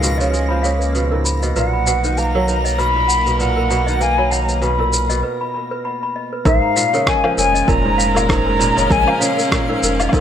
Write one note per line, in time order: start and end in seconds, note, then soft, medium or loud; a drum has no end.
0.00 1.53 C#2 medium
0.00 0.23 B2 medium
0.00 1.55 C#3 medium
0.00 2.63 F3 medium
0.00 0.32 G#3 medium
0.00 1.56 G#3 medium
0.00 5.24 A#3 medium
0.00 0.18 B4 medium
0.00 0.29 F5 medium
0.00 5.24 A#6 medium
0.00 shaker medium
0.18 0.63 C#3 medium
0.18 0.32 D#5 medium
0.18 shaker soft
0.31 1.61 G#3 medium
0.31 0.42 B4 medium
0.31 shaker soft
0.49 0.69 F3 medium
0.49 0.57 B5 medium
0.63 1.00 C#3 medium
0.63 0.73 F5 medium
0.63 shaker medium
0.79 0.92 B4 medium
0.79 shaker soft
0.93 1.15 B2 medium
0.93 1.04 B4 medium
0.93 shaker soft
1.11 1.46 G#2 medium
1.11 1.24 A#4 medium
1.25 1.35 B5 medium
1.25 shaker medium
1.43 1.61 B2 medium
1.43 1.55 D#5 medium
1.43 shaker soft
1.56 5.23 B1 medium
1.56 1.91 A#2 medium
1.56 1.66 B4 medium
1.56 2.19 F#5 medium
1.56 shaker soft
1.73 1.81 B5 medium
1.86 2.07 B2 medium
1.86 5.23 D#4 medium
1.86 2.03 F#5 medium
1.86 shaker medium
2.04 2.47 D#3 medium
2.04 2.17 B4 medium
2.04 shaker soft
2.17 2.84 A#3 medium
2.17 2.27 B4 medium
2.17 2.47 A#5 medium
2.17 shaker soft
2.26 5.23 A#3 medium
2.35 2.53 F#3 medium
2.35 2.47 A#4 medium
2.47 2.83 D#3 medium
2.47 2.64 B4 medium
2.47 2.80 A#5 medium
2.47 shaker medium
2.65 2.78 D#5 medium
2.65 shaker soft
2.78 2.99 B2 medium
2.78 2.88 B4 medium
2.78 3.39 B5 loud
2.78 shaker soft
2.95 3.29 A#2 medium
2.95 3.03 B5 medium
3.08 3.18 F#5 medium
3.08 shaker medium
3.26 3.45 B2 medium
3.26 3.38 B4 medium
3.26 shaker soft
3.39 3.75 A#2 medium
3.39 3.49 B4 medium
3.39 4.03 F#5 medium
3.39 shaker soft
3.56 3.69 A#4 medium
3.70 3.90 B2 medium
3.70 3.80 B5 medium
3.70 shaker medium
3.87 4.30 D#3 medium
3.87 4.00 D#5 medium
3.87 shaker soft
4.00 4.68 A#3 loud
4.00 4.10 B4 medium
4.00 4.32 G#5 medium
4.00 shaker soft
4.18 4.36 F#3 medium
4.18 4.25 B5 medium
4.31 4.67 D#3 medium
4.31 4.47 F#5 loud
4.31 4.62 A#5 medium
4.31 shaker medium
4.49 4.61 B4 medium
4.49 shaker soft
4.62 4.82 B2 medium
4.62 4.72 B4 medium
4.62 5.19 B5 medium
4.62 shaker soft
4.79 5.13 A#2 medium
4.79 4.92 A#4 medium
4.93 5.09 B4 medium
4.93 shaker medium
5.09 6.51 B2 medium
5.09 5.22 D#5 medium
5.09 shaker soft
5.23 5.33 B4 medium
5.41 5.48 B5 medium
5.54 5.70 B5 medium
5.71 5.84 B4 medium
5.85 6.01 B5 medium
6.03 6.15 B5 medium
6.16 6.32 D#5 medium
6.33 6.45 B4 medium
6.44 6.59 A#1 loud
6.44 6.81 G#2 loud
6.44 10.20 A#2 medium
6.44 10.20 F3 medium
6.44 6.56 A#4 medium
6.44 7.09 F5 loud
6.44 10.20 F6 medium
6.44 kick loud
6.44 shaker soft
6.62 6.70 A#5 medium
6.76 6.97 A#2 medium
6.76 6.92 F5 loud
6.76 shaker medium
6.88 10.20 G#3 medium
6.93 7.36 C#3 medium
6.93 7.06 A#4 medium
6.93 shaker soft
7.07 8.89 G#3 loud
7.07 7.17 A#4 medium
7.07 7.36 G#5 medium
7.07 kick loud
7.07 cross-stick loud
7.07 shaker soft
7.24 7.42 F3 loud
7.24 7.36 A#4 medium
7.24 low woodblock medium
7.30 10.20 C#4 medium
7.37 7.63 F1 loud
7.37 7.73 C#3 medium
7.37 7.54 A#4 medium
7.37 7.70 G#5 loud
7.37 shaker medium
7.48 10.20 A#4 medium
7.54 7.67 D#5 loud
7.54 shaker soft
7.67 8.72 F1 medium
7.67 7.88 A#2 medium
7.67 7.77 A#4 medium
7.67 8.29 A#5 loud
7.67 kick loud
7.67 shaker soft
7.85 8.19 G#2 medium
7.85 7.93 A#5 medium
7.98 8.08 F5 loud
7.98 shaker medium
8.14 8.34 A#2 medium
8.14 8.28 A#4 medium
8.14 low woodblock medium
8.14 shaker soft
8.29 8.65 G#2 medium
8.29 8.39 A#4 medium
8.29 8.93 A#5 loud
8.29 kick loud
8.29 cross-stick loud
8.29 shaker soft
8.46 8.59 A#4 medium
8.59 8.80 A#2 loud
8.59 8.70 A#5 medium
8.59 shaker medium
8.76 8.88 F1 medium
8.76 9.20 C#3 medium
8.76 8.90 D#5 medium
8.76 shaker soft
8.90 9.05 A#1 loud
8.90 10.20 G#3 loud
8.90 9.00 A#4 medium
8.90 9.22 G#5 loud
8.90 kick loud
8.90 shaker soft
9.07 9.26 F3 loud
9.07 9.16 A#5 medium
9.07 low woodblock medium
9.20 9.57 C#3 medium
9.20 9.37 F5 loud
9.20 9.50 F5 medium
9.20 shaker medium
9.38 9.51 A#4 medium
9.38 shaker soft
9.52 9.72 A#2 loud
9.52 9.62 A#4 medium
9.52 10.10 F5 medium
9.52 kick loud
9.52 cross-stick loud
9.52 shaker soft
9.68 10.03 G#2 medium
9.68 9.82 A#4 medium
9.83 10.08 F1 loud
9.83 9.99 A#4 medium
9.83 shaker medium
9.99 10.18 A#2 medium
9.99 10.13 D#5 medium
9.99 low woodblock medium
9.99 shaker soft
10.09 10.20 G#2 medium
10.09 kick loud
10.09 low woodblock medium
10.14 10.20 A#4 medium
10.14 shaker soft